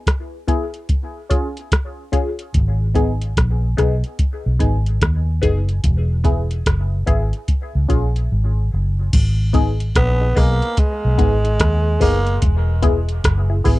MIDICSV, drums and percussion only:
0, 0, Header, 1, 2, 480
1, 0, Start_track
1, 0, Key_signature, 5, "minor"
1, 0, Tempo, 823045
1, 1482, Time_signature, 4, 2, 24, 8
1, 8043, End_track
2, 0, Start_track
2, 0, Title_t, "Drums"
2, 39, Note_on_c, 9, 36, 99
2, 41, Note_on_c, 9, 42, 79
2, 45, Note_on_c, 9, 37, 91
2, 97, Note_off_c, 9, 36, 0
2, 99, Note_off_c, 9, 42, 0
2, 104, Note_off_c, 9, 37, 0
2, 279, Note_on_c, 9, 36, 82
2, 281, Note_on_c, 9, 42, 68
2, 338, Note_off_c, 9, 36, 0
2, 339, Note_off_c, 9, 42, 0
2, 430, Note_on_c, 9, 42, 45
2, 488, Note_off_c, 9, 42, 0
2, 519, Note_on_c, 9, 42, 67
2, 520, Note_on_c, 9, 36, 89
2, 577, Note_off_c, 9, 42, 0
2, 578, Note_off_c, 9, 36, 0
2, 761, Note_on_c, 9, 42, 66
2, 762, Note_on_c, 9, 36, 85
2, 820, Note_off_c, 9, 36, 0
2, 820, Note_off_c, 9, 42, 0
2, 915, Note_on_c, 9, 42, 51
2, 973, Note_off_c, 9, 42, 0
2, 1002, Note_on_c, 9, 36, 112
2, 1002, Note_on_c, 9, 42, 85
2, 1008, Note_on_c, 9, 37, 104
2, 1060, Note_off_c, 9, 36, 0
2, 1060, Note_off_c, 9, 42, 0
2, 1067, Note_off_c, 9, 37, 0
2, 1241, Note_on_c, 9, 36, 84
2, 1241, Note_on_c, 9, 42, 72
2, 1300, Note_off_c, 9, 36, 0
2, 1300, Note_off_c, 9, 42, 0
2, 1393, Note_on_c, 9, 42, 52
2, 1451, Note_off_c, 9, 42, 0
2, 1483, Note_on_c, 9, 36, 99
2, 1483, Note_on_c, 9, 42, 80
2, 1541, Note_off_c, 9, 36, 0
2, 1541, Note_off_c, 9, 42, 0
2, 1722, Note_on_c, 9, 42, 58
2, 1724, Note_on_c, 9, 36, 89
2, 1781, Note_off_c, 9, 42, 0
2, 1782, Note_off_c, 9, 36, 0
2, 1875, Note_on_c, 9, 42, 54
2, 1933, Note_off_c, 9, 42, 0
2, 1964, Note_on_c, 9, 36, 96
2, 1966, Note_on_c, 9, 42, 84
2, 1970, Note_on_c, 9, 37, 87
2, 2022, Note_off_c, 9, 36, 0
2, 2024, Note_off_c, 9, 42, 0
2, 2029, Note_off_c, 9, 37, 0
2, 2204, Note_on_c, 9, 36, 80
2, 2206, Note_on_c, 9, 42, 69
2, 2211, Note_on_c, 9, 37, 59
2, 2262, Note_off_c, 9, 36, 0
2, 2265, Note_off_c, 9, 42, 0
2, 2270, Note_off_c, 9, 37, 0
2, 2354, Note_on_c, 9, 42, 46
2, 2413, Note_off_c, 9, 42, 0
2, 2443, Note_on_c, 9, 42, 77
2, 2444, Note_on_c, 9, 36, 95
2, 2501, Note_off_c, 9, 42, 0
2, 2502, Note_off_c, 9, 36, 0
2, 2684, Note_on_c, 9, 36, 79
2, 2684, Note_on_c, 9, 42, 57
2, 2742, Note_off_c, 9, 36, 0
2, 2742, Note_off_c, 9, 42, 0
2, 2837, Note_on_c, 9, 42, 57
2, 2895, Note_off_c, 9, 42, 0
2, 2924, Note_on_c, 9, 36, 107
2, 2925, Note_on_c, 9, 42, 87
2, 2931, Note_on_c, 9, 37, 104
2, 2982, Note_off_c, 9, 36, 0
2, 2983, Note_off_c, 9, 42, 0
2, 2989, Note_off_c, 9, 37, 0
2, 3164, Note_on_c, 9, 36, 87
2, 3165, Note_on_c, 9, 42, 68
2, 3222, Note_off_c, 9, 36, 0
2, 3223, Note_off_c, 9, 42, 0
2, 3316, Note_on_c, 9, 42, 51
2, 3375, Note_off_c, 9, 42, 0
2, 3404, Note_on_c, 9, 36, 99
2, 3404, Note_on_c, 9, 42, 84
2, 3462, Note_off_c, 9, 36, 0
2, 3462, Note_off_c, 9, 42, 0
2, 3642, Note_on_c, 9, 42, 58
2, 3644, Note_on_c, 9, 36, 90
2, 3700, Note_off_c, 9, 42, 0
2, 3703, Note_off_c, 9, 36, 0
2, 3795, Note_on_c, 9, 42, 53
2, 3854, Note_off_c, 9, 42, 0
2, 3884, Note_on_c, 9, 36, 94
2, 3885, Note_on_c, 9, 42, 83
2, 3889, Note_on_c, 9, 37, 86
2, 3942, Note_off_c, 9, 36, 0
2, 3943, Note_off_c, 9, 42, 0
2, 3948, Note_off_c, 9, 37, 0
2, 4124, Note_on_c, 9, 36, 86
2, 4125, Note_on_c, 9, 42, 72
2, 4182, Note_off_c, 9, 36, 0
2, 4183, Note_off_c, 9, 42, 0
2, 4275, Note_on_c, 9, 42, 44
2, 4333, Note_off_c, 9, 42, 0
2, 4363, Note_on_c, 9, 42, 70
2, 4364, Note_on_c, 9, 36, 87
2, 4421, Note_off_c, 9, 42, 0
2, 4422, Note_off_c, 9, 36, 0
2, 4605, Note_on_c, 9, 36, 77
2, 4606, Note_on_c, 9, 42, 59
2, 4664, Note_off_c, 9, 36, 0
2, 4664, Note_off_c, 9, 42, 0
2, 4759, Note_on_c, 9, 42, 52
2, 4817, Note_off_c, 9, 42, 0
2, 5325, Note_on_c, 9, 36, 116
2, 5325, Note_on_c, 9, 42, 91
2, 5325, Note_on_c, 9, 49, 99
2, 5383, Note_off_c, 9, 36, 0
2, 5384, Note_off_c, 9, 42, 0
2, 5384, Note_off_c, 9, 49, 0
2, 5563, Note_on_c, 9, 42, 60
2, 5566, Note_on_c, 9, 36, 97
2, 5622, Note_off_c, 9, 42, 0
2, 5624, Note_off_c, 9, 36, 0
2, 5717, Note_on_c, 9, 42, 59
2, 5775, Note_off_c, 9, 42, 0
2, 5805, Note_on_c, 9, 36, 111
2, 5806, Note_on_c, 9, 42, 92
2, 5810, Note_on_c, 9, 37, 99
2, 5863, Note_off_c, 9, 36, 0
2, 5864, Note_off_c, 9, 42, 0
2, 5869, Note_off_c, 9, 37, 0
2, 6045, Note_on_c, 9, 36, 93
2, 6045, Note_on_c, 9, 46, 73
2, 6050, Note_on_c, 9, 37, 59
2, 6103, Note_off_c, 9, 36, 0
2, 6104, Note_off_c, 9, 46, 0
2, 6109, Note_off_c, 9, 37, 0
2, 6195, Note_on_c, 9, 42, 52
2, 6253, Note_off_c, 9, 42, 0
2, 6282, Note_on_c, 9, 42, 77
2, 6284, Note_on_c, 9, 36, 101
2, 6340, Note_off_c, 9, 42, 0
2, 6342, Note_off_c, 9, 36, 0
2, 6524, Note_on_c, 9, 42, 60
2, 6525, Note_on_c, 9, 36, 100
2, 6582, Note_off_c, 9, 42, 0
2, 6583, Note_off_c, 9, 36, 0
2, 6676, Note_on_c, 9, 42, 56
2, 6734, Note_off_c, 9, 42, 0
2, 6762, Note_on_c, 9, 42, 90
2, 6763, Note_on_c, 9, 36, 121
2, 6769, Note_on_c, 9, 37, 118
2, 6821, Note_off_c, 9, 42, 0
2, 6822, Note_off_c, 9, 36, 0
2, 6827, Note_off_c, 9, 37, 0
2, 7003, Note_on_c, 9, 36, 89
2, 7004, Note_on_c, 9, 46, 80
2, 7061, Note_off_c, 9, 36, 0
2, 7062, Note_off_c, 9, 46, 0
2, 7153, Note_on_c, 9, 42, 57
2, 7212, Note_off_c, 9, 42, 0
2, 7243, Note_on_c, 9, 36, 104
2, 7243, Note_on_c, 9, 42, 96
2, 7301, Note_off_c, 9, 42, 0
2, 7302, Note_off_c, 9, 36, 0
2, 7480, Note_on_c, 9, 42, 65
2, 7483, Note_on_c, 9, 36, 95
2, 7538, Note_off_c, 9, 42, 0
2, 7542, Note_off_c, 9, 36, 0
2, 7632, Note_on_c, 9, 42, 59
2, 7690, Note_off_c, 9, 42, 0
2, 7722, Note_on_c, 9, 36, 104
2, 7723, Note_on_c, 9, 42, 93
2, 7727, Note_on_c, 9, 37, 95
2, 7780, Note_off_c, 9, 36, 0
2, 7781, Note_off_c, 9, 42, 0
2, 7786, Note_off_c, 9, 37, 0
2, 7961, Note_on_c, 9, 36, 93
2, 7961, Note_on_c, 9, 46, 73
2, 8019, Note_off_c, 9, 46, 0
2, 8020, Note_off_c, 9, 36, 0
2, 8043, End_track
0, 0, End_of_file